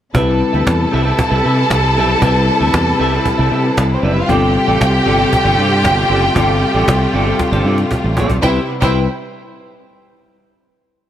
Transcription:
0.14 C2 C3 G3 C4 E4 G4 A4 B4 E5 A5, cajon bass
0.40 muted clean electric guitar stroke
0.53 D2 C4 G4 B4 E5, cajon slap
0.67 E2, muted clean electric guitar stroke, cajon bass, cajon slap
0.80 muted clean electric guitar stroke
0.92 C2 C4 G4 B4 E5
1.04 C4 G4 B4 E5, cajon slap
1.18 muted clean electric guitar stroke, cajon bass
1.30 C2 C4 G4 B4 E5
1.43 C3 C4 G4 B4 E5
1.57 muted clean electric guitar stroke
1.70 C2, cajon bass, cajon slap
1.84 muted clean electric guitar stroke
1.97 B1 C4 G4 B4 E5
2.09 muted clean electric guitar stroke
2.20 C2 G3 C4 E4 G4 B4 E5, cajon bass
2.48 muted clean electric guitar stroke
2.60 D2 C4 G4 B4 E5, cajon slap
2.74 E2, muted clean electric guitar stroke, cajon bass, cajon slap
2.86 muted clean electric guitar stroke
2.99 C2 C4 G4 B4 E5
3.12 C4 G4 B4 E5, cajon slap
3.26 muted clean electric guitar stroke, cajon bass
3.38 C2 C4 G4 B4 E5
3.52 C3 C4 G4 B4 E5
3.65 muted clean electric guitar stroke, cajon slap
3.77 C2, cajon bass, cajon slap
3.91 C4 C5, muted clean electric guitar stroke
4.03 F#1 C4 D4 G4 B4 D5 E5
4.12 E4 E5
4.16 muted clean electric guitar stroke
4.20 F4 F5
4.28 G1 G3 A3 C4 F4 G4 A4 D5 G5, cajon bass
4.55 muted clean electric guitar stroke
4.67 A1 C4 F4 A4 D5, cajon slap
4.80 C2, muted clean electric guitar stroke, cajon bass, cajon slap
4.94 muted clean electric guitar stroke
5.05 G1 C4 F4 A4 D5
5.18 C4 F4 A4 D5, cajon slap
5.32 muted clean electric guitar stroke, cajon bass
5.44 G1 C4 F4 A4 D5
5.58 G2 C4 F4 A4 D5
5.71 muted clean electric guitar stroke
5.84 G1, cajon bass, cajon slap
5.97 muted clean electric guitar stroke
6.09 F#1 C4 F4 A4 D5
6.23 muted clean electric guitar stroke
6.34 G1 G3 C4 F4 A4 D5, cajon bass
6.61 muted clean electric guitar stroke
6.74 A1 C4 F4 A4 D5, cajon slap
6.88 C2, muted clean electric guitar stroke, cajon bass, cajon slap
7.02 muted clean electric guitar stroke
7.13 G1 C4 F4 A4 D5
7.26 C4 F4 A4 D5, cajon slap
7.39 muted clean electric guitar stroke, cajon bass, cajon slap
7.52 G1 C4 F4 A4 D5, cajon slap
7.64 G2 C4 F4 A4 D5
7.78 muted clean electric guitar stroke, cajon slap
7.91 cajon bass, cajon slap
8.04 A1, muted clean electric guitar stroke
8.17 A#1 C4 F4 A4 D5, cajon bass
8.30 B1, muted clean electric guitar stroke, cajon bass
8.42 C2 C3 G3 B3 C4 E4 G4 B4 C5 E5 G5, cajon bass, cajon slap
8.81 C2 G3 C4 E4 G4 B4 C5 E5 G5, cajon bass

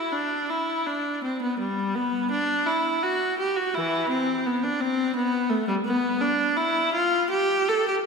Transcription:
Already playing: E4
0.13 D4
0.50 E4
0.86 D4
1.24 C4
1.42 B3
1.59 G3
1.95 B3
2.31 D4
2.66 E4
3.03 F#4
3.39 G4
3.56 F#4
3.75 E3 E4
4.09 C4
4.46 B3
4.64 D4
4.81 C4
5.16 B3
5.50 A3
5.68 G3
5.85 B3
6.21 D4
6.57 E4
6.94 F4
7.30 G4
7.69 A4
7.88 G4

